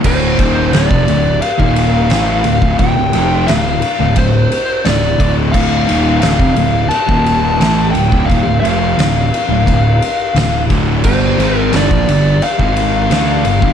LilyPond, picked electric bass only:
\new Staff \with { instrumentName = "Picked electric bass" } { \clef bass \time 4/4 \key d \minor \tempo 4 = 87 d,,8 ees,,8 d,,16 f,,16 d,,8 r16 ees,,8. a,,8 d,,16 d,,16 | ees,,16 d,,16 f,,8 d,,8 r16 d,,16 d,,8 r8 d,,8 d,,8 | d,,8 ees,,8 d,,16 f,,16 d,,8 r16 ees,,8. a,,8 d,,16 d,,16 | ees,,16 d,,16 f,,8 d,,8 r16 d,,16 d,,8 r8 d,,8 d,,8 |
g,,8 gis,,8 g,,16 bes,,16 g,,8 r16 gis,,8. d,8 g,,16 g,,16 | }